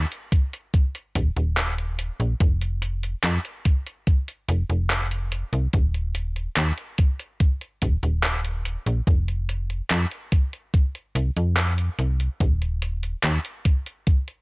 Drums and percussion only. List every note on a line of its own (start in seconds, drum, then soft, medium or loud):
0.12 closed hi-hat soft
0.32 kick loud
0.32 closed hi-hat loud
0.53 closed hi-hat soft
0.74 kick loud
0.74 closed hi-hat medium
0.95 closed hi-hat soft
1.15 kick medium
1.15 closed hi-hat medium
1.37 closed hi-hat soft
1.57 clap loud
1.57 closed hi-hat medium
1.78 closed hi-hat soft
1.99 closed hi-hat medium
2.20 closed hi-hat soft
2.40 kick loud
2.40 closed hi-hat medium
2.61 closed hi-hat soft
2.82 closed hi-hat medium
3.03 closed hi-hat soft
3.24 clap loud
3.24 closed hi-hat medium
3.45 closed hi-hat soft
3.65 kick loud
3.65 closed hi-hat loud
3.86 closed hi-hat soft
4.07 kick loud
4.07 closed hi-hat medium
4.28 closed hi-hat soft
4.49 closed hi-hat loud
4.70 closed hi-hat soft
4.90 clap loud
4.90 closed hi-hat medium
5.11 closed hi-hat soft
5.32 closed hi-hat medium
5.53 closed hi-hat soft
5.73 kick loud
5.73 closed hi-hat medium
5.94 closed hi-hat soft
6.15 closed hi-hat medium
6.36 closed hi-hat soft
6.57 clap loud
6.57 closed hi-hat medium
6.78 closed hi-hat soft
6.98 kick loud
6.98 closed hi-hat loud
7.19 closed hi-hat soft
7.40 kick loud
7.40 closed hi-hat medium
7.61 closed hi-hat soft
7.82 kick medium
7.82 closed hi-hat medium
8.03 closed hi-hat soft
8.23 clap loud
8.23 closed hi-hat medium
8.45 closed hi-hat soft
8.65 closed hi-hat medium
8.86 closed hi-hat soft
9.07 kick loud
9.07 closed hi-hat medium
9.28 closed hi-hat soft
9.49 closed hi-hat medium
9.70 closed hi-hat soft
9.90 clap loud
9.90 closed hi-hat medium
10.11 closed hi-hat soft
10.32 kick loud
10.32 closed hi-hat medium
10.53 closed hi-hat soft
10.74 kick loud
10.74 closed hi-hat medium
10.95 closed hi-hat soft
11.16 closed hi-hat medium
11.37 closed hi-hat soft
11.57 clap loud
11.57 closed hi-hat medium
11.78 closed hi-hat soft
11.99 closed hi-hat medium
12.20 closed hi-hat soft
12.40 kick loud
12.40 closed hi-hat medium
12.62 closed hi-hat soft
12.82 closed hi-hat medium
13.03 closed hi-hat soft
13.24 clap loud
13.24 closed hi-hat medium
13.45 closed hi-hat soft
13.65 kick loud
13.65 closed hi-hat medium
13.86 closed hi-hat soft
14.07 kick loud
14.07 closed hi-hat medium
14.28 closed hi-hat soft